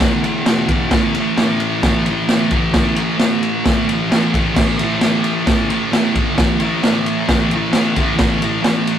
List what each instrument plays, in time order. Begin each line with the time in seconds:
Already playing: distorted electric guitar E2
0.00 distorted electric guitar B2 E3, kick, snare, ride
0.22 distorted electric guitar E3, ride
0.27 distorted electric guitar B2
0.45 distorted electric guitar E2 B2, snare, ride
0.49 distorted electric guitar E3
0.67 distorted electric guitar E3, kick, ride
0.72 distorted electric guitar B2
0.90 distorted electric guitar A2 E3, kick, snare, ride
0.94 distorted electric guitar A3
1.15 distorted electric guitar A3, ride
1.20 distorted electric guitar E3
1.37 distorted electric guitar A2 E3, snare, ride
1.42 distorted electric guitar A3
1.60 ride
1.83 distorted electric guitar A2 E3, kick, snare, ride
1.87 distorted electric guitar A3
2.06 distorted electric guitar A3, ride
2.11 distorted electric guitar E3
2.28 distorted electric guitar A2 E3, snare, ride
2.33 distorted electric guitar A3
2.51 distorted electric guitar A3, kick, ride
2.57 distorted electric guitar E3
2.74 distorted electric guitar A2 E3, kick, snare, ride
2.78 distorted electric guitar A3
2.96 distorted electric guitar A3, ride
3.00 distorted electric guitar E3
3.18 distorted electric guitar A2 E3, snare, ride
3.23 distorted electric guitar A3
3.43 ride
3.65 distorted electric guitar A2 E3, kick, snare, ride
3.69 distorted electric guitar A3
3.88 distorted electric guitar A3, ride
3.93 distorted electric guitar E3
4.10 distorted electric guitar A2 E3, snare, ride
4.14 distorted electric guitar A3
4.33 distorted electric guitar A3, kick, ride
4.37 distorted electric guitar E3
4.54 distorted electric guitar A2 E3, kick, snare, crash
4.59 distorted electric guitar A3
4.78 distorted electric guitar A3, ride
4.83 distorted electric guitar E3
5.01 distorted electric guitar A2 E3, snare, ride
5.05 distorted electric guitar A3
5.24 ride
5.46 distorted electric guitar A2 E3, kick, snare, ride
5.51 distorted electric guitar A3
5.69 distorted electric guitar E3 A3, ride
5.92 distorted electric guitar A2 E3, snare, ride
5.97 distorted electric guitar A3
6.14 distorted electric guitar A3, kick, ride
6.19 distorted electric guitar E3
6.36 distorted electric guitar A2 E3, kick, snare, ride
6.41 distorted electric guitar A3
6.60 distorted electric guitar A3, ride
6.64 distorted electric guitar E3
6.82 distorted electric guitar A2 E3, snare, ride
6.87 distorted electric guitar A3
7.06 ride
7.28 distorted electric guitar A2 E3, kick, snare, ride
7.33 distorted electric guitar A3
7.51 distorted electric guitar A3, ride
7.56 distorted electric guitar E3
7.72 distorted electric guitar A2 E3, snare, ride
7.76 distorted electric guitar A3
7.96 distorted electric guitar A3, kick, ride
8.00 distorted electric guitar E3
8.17 distorted electric guitar A2 E3 A3, kick, snare, ride
8.41 distorted electric guitar E3 A3, ride
8.62 distorted electric guitar A2 E3, snare, ride
8.67 distorted electric guitar A3
8.87 ride